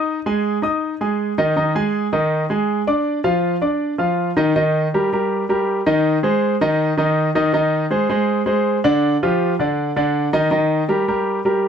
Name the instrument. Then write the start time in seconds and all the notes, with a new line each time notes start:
grand piano
Already playing: D#4 D#5 D#6
0.26 G#3 G#4 G#5
0.62 D#4 D#5 D#6
1.01 G#3 G#4 G#5
1.38 D#3 D#4 D#5
1.56 D#3 D#4 D#5
1.75 G#3 G#4 G#5
2.13 D#3 D#4 D#5
2.50 G#3 G#4 G#5
2.87 D4 D5 D6
3.24 F3 F4 F5
3.62 D4 D5 D6
3.98 F3 F4 F5
4.37 D#3 D#4 D#5
4.56 D#3 D#4 D#5
4.94 G3 G4 A#4
5.13 G3 G4 A#4
5.49 G3 G4 A#4
5.86 D#3 D#4 D#5
6.23 G#3 G#4 C5
6.61 D#3 D#4 D#5
6.97 D#3 D#4 D#5
7.35 D#3 D#4 D#5
7.53 D#3 D#4 D#5
7.90 G#3 G#4 C5
8.09 G#3 G#4 C5
8.46 G#3 G#4 C5
8.84 D3 D4 D5
9.23 F3 F4 G4
9.59 D3 D4 D5
9.96 D3 D4 D5
10.33 D#3 D#4 D#5
10.51 D#3 D#4 D#5
10.89 G3 G4 A#4
11.08 G3 G4 A#4
11.45 G3 G4 A#4